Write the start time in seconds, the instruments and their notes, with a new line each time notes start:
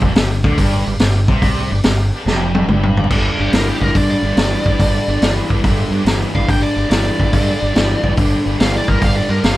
0.01 fingered electric bass F1, distorted electric guitar F2, tonewheel organ D4 G4 B4 D5, kick
0.14 fingered electric bass G1, distorted electric guitar G2, tonewheel organ D4 G4 B4 E5, snare, open hi-hat
0.44 fingered electric bass D2, distorted electric guitar D3, tonewheel organ D4 G4 B4 D5, kick
0.57 fingered electric bass G1, distorted electric guitar G2, tonewheel organ D4 G4 B4 D5, kick, open hi-hat
0.86 fingered electric bass G1, distorted electric guitar G2, tonewheel organ D4 G4 B4 F5
0.99 fingered electric bass G1, distorted electric guitar G2, tonewheel organ D4 G4 B4 D5, snare, open hi-hat
1.28 fingered electric bass C2, distorted electric guitar C3, tonewheel organ D4 G4 B4 F5, kick
1.42 tonewheel organ D4 G4 B4 D5, kick, open hi-hat
1.70 fingered electric bass G1, distorted electric guitar G2, tonewheel organ D4 G4 B4 D5
1.83 fingered electric bass G1, distorted electric guitar G2, tonewheel organ D4 G4 B4 F5, snare, open hi-hat
2.14 tonewheel organ D4 G4 B4 F5 A5
2.26 fingered electric bass F1, distorted electric guitar F2, tonewheel organ D4 G4 B4 E5 G5, snare
2.55 tonewheel organ D4 G4 B4 E5 F5, high tom
2.67 fingered electric bass G1, distorted electric guitar G2, tonewheel organ D4 G4 B4 E5, mid tom
2.83 mid tom
2.97 tonewheel organ D4 G4 B4 D5, floor tom
3.04 floor tom
3.10 fingered electric bass G1, distorted electric guitar G2 D3, tonewheel organ D4 G4 B4 D5, kick, crash
3.38 fingered electric bass G1, distorted electric guitar G2 D3, tonewheel organ D4 G4 B4 D5, lead electric guitar G4
3.52 fingered electric bass G1, distorted electric guitar G2 E3, tonewheel organ D4 G4 B4 D5, lead electric guitar A#4, snare, open hi-hat
3.69 lead electric guitar G4
3.80 fingered electric bass G1, distorted electric guitar G2 E3, tonewheel organ D4 G4 B4 D5, lead electric guitar A#4, kick
3.94 distorted electric guitar G2 D3, fingered electric bass G2, tonewheel organ D4 G4 B4 D5, lead electric guitar D5, kick, open hi-hat
4.11 lead electric guitar D5
4.23 fingered electric bass G1, distorted electric guitar G2 D3, tonewheel organ D4 G4 B4 D5
4.37 fingered electric bass G1, distorted electric guitar G2 E3, tonewheel organ D4 G4 B4 F5, snare, open hi-hat
4.66 fingered electric bass G1, distorted electric guitar G2 E3, tonewheel organ D4 G4 B4 D5, kick
4.79 fingered electric bass G1, distorted electric guitar G2 D3, tonewheel organ D4 G4 B4 D5, kick, open hi-hat
5.08 fingered electric bass G1, distorted electric guitar G2 D3, tonewheel organ D4 G4 B4 D5
5.21 fingered electric bass G1, distorted electric guitar G2 E3, tonewheel organ D4 G4 B4 D5, snare, open hi-hat
5.49 fingered electric bass G1, distorted electric guitar G2 E3, tonewheel organ D4 G4 B4 D5, kick
5.63 fingered electric bass G1, distorted electric guitar G2 D3, tonewheel organ D4 G4 B4 E5, kick, open hi-hat
5.91 fingered electric bass G2, distorted electric guitar G2 D3, tonewheel organ D4 B4
5.95 tonewheel organ G4 D5
6.05 fingered electric bass G1, distorted electric guitar G2 E3, tonewheel organ D4, snare, open hi-hat
6.09 tonewheel organ G4 B4 D5
6.33 fingered electric bass G1, distorted electric guitar G2 E3, tonewheel organ D4 G4 B4 D5, lead electric guitar F5, kick
6.46 fingered electric bass G1, distorted electric guitar G2 D3, tonewheel organ D4 G4 B4 D5, lead electric guitar G5, kick, open hi-hat
6.63 lead electric guitar D5
6.75 fingered electric bass G1, distorted electric guitar G2 D3, tonewheel organ D4 G4 B4 D5
6.89 fingered electric bass G1, distorted electric guitar G2 E3, tonewheel organ D4 G4 B4 D5, lead electric guitar D5, snare, open hi-hat
7.19 fingered electric bass G1, distorted electric guitar G2 E3, tonewheel organ D4 G4 B4 E5, kick
7.32 distorted electric guitar G2 D3, fingered electric bass G2, tonewheel organ D4 G4 B4 E5, kick, open hi-hat
7.61 fingered electric bass G1, distorted electric guitar G2 D3, tonewheel organ D4 G4 B4
7.65 tonewheel organ D5
7.74 fingered electric bass G1, distorted electric guitar G2 E3, tonewheel organ D4 G4 B4 D5, snare, open hi-hat
8.02 fingered electric bass G1, distorted electric guitar G2 E3, tonewheel organ D4 G4, kick
8.07 tonewheel organ B4 D5
8.16 fingered electric bass G1, distorted electric guitar G2 D3, kick, open hi-hat
8.20 tonewheel organ D4 G4 B4 D5
8.45 fingered electric bass G1, distorted electric guitar G2 D3, tonewheel organ D4 G4 B4 D5
8.59 fingered electric bass G1, distorted electric guitar G2 E3, tonewheel organ D4 G4 B4 D5, lead electric guitar F5, snare, open hi-hat
8.77 lead electric guitar D5
8.87 fingered electric bass G1, distorted electric guitar G2 E3, tonewheel organ D4 G4 B4 D5, lead electric guitar A#4, kick
8.99 fingered electric bass G1, distorted electric guitar G2 D3, tonewheel organ D4 G4 B4 F5, kick, open hi-hat
9.04 lead electric guitar F5
9.17 lead electric guitar D5
9.29 fingered electric bass G2, distorted electric guitar G2 D3, tonewheel organ D4 G4 B4 D5, lead electric guitar A#4
9.42 fingered electric bass G1, distorted electric guitar G2 E3, tonewheel organ D4 G4 B4 D5, lead electric guitar F5, snare, open hi-hat